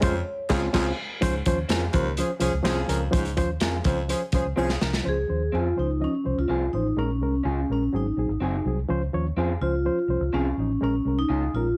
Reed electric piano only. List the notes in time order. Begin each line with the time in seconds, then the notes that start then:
0.01 G#3 C#4 F4 C5
0.50 G#3 C#4 F4 C5
0.73 G#3 C#4 F4 C5 G#5
1.21 F3 C#4 C5
1.46 F3 C#4 C5
1.70 F3 C#4 A#4
1.93 F3 C#4 C5
2.18 F3 C#4 C5
2.40 F3 C#4 C5
2.63 F3 C#4 C5
2.88 F3 C#4 A#4
3.11 F3 C#4 C5
3.37 F3 C#4 C5
3.61 F3 C#4 A#4
3.85 F3 C#4 C5
4.08 F3 C#4 C5
4.33 F3 C#4 C5
4.56 F3 C#4 C5
4.81 F3 C#4 A#4
5.03 F3 C#4 C5
5.28 F3 C#4 C5
5.53 F3 C#4 C5
5.76 F3 C#4 C5
6.00 F3 C#4 D#5
6.24 F3 C#4 C5
6.49 F3 C#4 C5
6.73 F3 C#4 C5
6.97 G#3 C#4 A#4
7.21 G#3 C#4 A#4
7.46 G#3 C#4 G#4
7.70 G#3 C#4 A#4
7.93 F#3 C4 G#4
8.17 F#3 C4 G#4
8.41 F#3 C4 G#4
8.65 F#3 C4 G#4
8.88 F3 C#4 C5
9.13 F3 C#4 C#5
9.37 F3 C#4 C5
9.62 F3 C#4 C5
9.85 F3 C#4 C5
10.08 F3 C#4 C5
10.33 F3 C#4 G#4
10.58 F3 C#4 D#4
10.81 G#3 C#4 A#4
11.05 G#3 C#4 A#4
11.30 G#3 C#4 F4
11.55 G#3 C#4 A#4